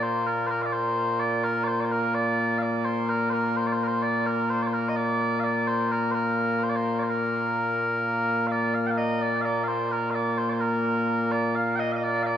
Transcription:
Already playing: A#2 A#3
0.03 C5
0.27 A#4
0.46 A#4 C5
0.62 D5 F5
0.73 C5
1.20 D5
1.44 A#4
1.64 C5 D5
1.80 D5
1.84 C5
1.91 A#4
2.15 D5
2.58 F5
2.62 D5
2.85 C5
3.09 A#4
3.30 A#4 C5
3.56 C5
3.67 D5
3.72 C5
3.83 A#4 C5
4.03 D5
4.26 A#4
4.50 C5
4.63 D5
4.67 C5
4.73 A#4
4.89 D#5
4.96 D5
5.40 F5
5.44 D5
5.67 C5
5.91 A#4
6.11 A#4 C5
6.63 C5
6.70 D5
6.76 C5
6.99 C5 D5
7.09 A#4
8.47 F5
8.52 D5
8.74 F5
8.87 F5 G5
8.97 D#5
9.22 D5
9.41 F5
9.45 D5
9.64 F5
9.68 C5
9.92 A#4
10.11 F5
10.15 D5
10.38 C5
10.50 C5 D5
10.60 A#4
11.32 D5
11.55 F5
11.76 D#5 G5
11.92 D#5 F5
12.03 D5
12.23 D5 F5

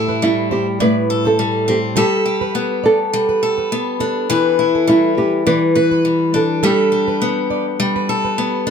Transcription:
Already playing: A2 G3 E4 A4
0.09 B4
0.22 G3 E4
0.51 G4 C5
0.80 A2 B4 D5
1.10 A4
1.25 A4 C5
1.39 G3
1.68 C4 G4
1.96 G3 G4 A4
2.26 G4
2.41 B4
2.55 B3
2.84 A4 D5
3.13 G3
3.29 B4
3.43 A4
3.58 B4
3.72 B3
4.00 D4 A4
4.30 E3 G4 B4
4.59 E4
4.75 A4
4.88 G3 E4
5.17 G4 B4
5.46 E3 B4 D5
5.75 B4
5.91 B4
6.05 G3
6.34 D4 A4
6.63 G3 G4 A4
6.92 G4
7.08 B4
7.22 B3
7.50 D5
7.80 G3
7.96 B4
8.09 A4
8.25 B4
8.38 B3
8.67 D4 A4

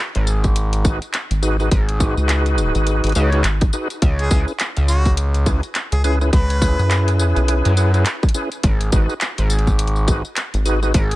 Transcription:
0.15 G#1, closed hi-hat
0.27 tambourine
0.44 kick, closed hi-hat, tambourine
0.56 closed hi-hat, tambourine
0.73 closed hi-hat, tambourine
0.85 D#4 F#4 G#4 B4, kick, cross-stick, tambourine
1.02 closed hi-hat, tambourine
1.14 clap, closed hi-hat, tambourine
1.31 G#1, closed hi-hat, tambourine
1.42 D#4 F#4 G#4 B4, tambourine
1.60 D#4 F#4 G#4 B4, cross-stick, tambourine
1.71 G#1, kick, closed hi-hat, tambourine
1.89 closed hi-hat, tambourine
2.00 D#4 F#4 G#4 B4, kick, tambourine
2.17 C#2, tambourine
2.29 clap, closed hi-hat, tambourine
2.46 closed hi-hat, tambourine
2.58 tambourine
2.75 G#1, closed hi-hat, tambourine
2.87 cross-stick, closed hi-hat, tambourine
3.04 G#1, closed hi-hat, tambourine
3.07 closed hi-hat
3.09 closed hi-hat
3.12 C#2 D#4 F#4 G#4 B4, closed hi-hat, tambourine
3.32 D#4 F#4 G#4 B4, closed hi-hat
3.44 G#1, clap, closed hi-hat, tambourine
3.61 kick, cross-stick, closed hi-hat, tambourine
3.73 D#4 F#4 G#4 B4, tambourine
3.90 closed hi-hat, tambourine
4.02 C#2, kick, closed hi-hat, tambourine
4.19 G#4, closed hi-hat, tambourine
4.31 C#2 C#4 E4 G#4 B4, kick, tambourine
4.48 tambourine
4.60 clap, closed hi-hat, tambourine
4.77 C#2, closed hi-hat, tambourine
4.88 F#4, tambourine
5.05 kick, closed hi-hat, tambourine
5.17 closed hi-hat, tambourine
5.34 closed hi-hat, tambourine
5.46 C#4 E4 G#4 B4, kick, cross-stick, tambourine
5.63 closed hi-hat, tambourine
5.75 clap, closed hi-hat, tambourine
5.92 C#2 G#4, closed hi-hat, tambourine
6.04 C#4 E4 G#4 B4, tambourine
6.21 C#4 E4 G#4 B4, cross-stick, tambourine
6.33 C#2 B4, kick, closed hi-hat, tambourine
6.50 closed hi-hat, tambourine
6.62 C#4 E4 G#4 B4, kick, tambourine
6.79 F#2, tambourine
6.91 clap, closed hi-hat, tambourine
7.08 closed hi-hat, tambourine
7.19 tambourine
7.36 B1, closed hi-hat, tambourine
7.48 cross-stick, closed hi-hat, tambourine
7.65 F#2, closed hi-hat, tambourine
7.77 C#4 E4 G#4 B4, tambourine
7.94 C#4 E4 G#4 B4, closed hi-hat, tambourine
8.06 clap, closed hi-hat, tambourine
8.23 kick, cross-stick, tambourine
8.29 closed hi-hat
8.34 C#4 E4 G#4 B4, tambourine
8.52 closed hi-hat, tambourine
8.63 G#1, kick, closed hi-hat, tambourine
8.81 closed hi-hat, tambourine
8.92 G#1 D#4 F#4 G#4 B4, kick, tambourine
9.09 tambourine
9.21 clap, closed hi-hat, tambourine
9.38 G#1, closed hi-hat, tambourine
9.50 tambourine
9.59 closed hi-hat
9.67 kick, tambourine
9.79 closed hi-hat, tambourine
9.87 closed hi-hat
9.96 tambourine
10.08 D#4 F#4 G#4 B4, kick, cross-stick, tambourine
10.25 tambourine
10.36 clap, closed hi-hat, tambourine
10.54 G#1, closed hi-hat, tambourine
10.65 D#4 F#4 G#4 B4, tambourine
10.83 D#4 F#4 G#4 B4, cross-stick, tambourine
10.94 G#1, kick, closed hi-hat, tambourine
11.11 closed hi-hat, tambourine

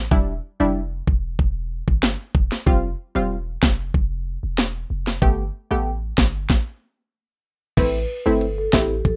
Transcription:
0.11 E1 G3 D4 E4, kick
0.60 F1 G3 D4 E4
1.07 E1, kick
1.39 E1, kick
1.88 G1, kick
2.03 snare
2.35 E1, kick
2.52 snare
2.66 F1 G3 C4 F4, kick
3.15 E1 G3 C4 F4
3.63 F1, kick, snare
3.94 F1, kick
4.43 E1
4.58 snare
4.90 F1
5.07 snare
5.22 G1 A3 B3 G4, kick
5.71 A1 A3 B3 G4
6.18 G1, kick, snare
6.50 kick, snare
7.77 A1 A3 C4 E4 B4, kick, closed hi-hat, crash
8.26 G1 A3 C4 E4 A4
8.41 closed hi-hat
8.58 A4
8.73 A1 A3 C4 E4 G4, kick, snare
9.05 A1 A4, kick, closed hi-hat

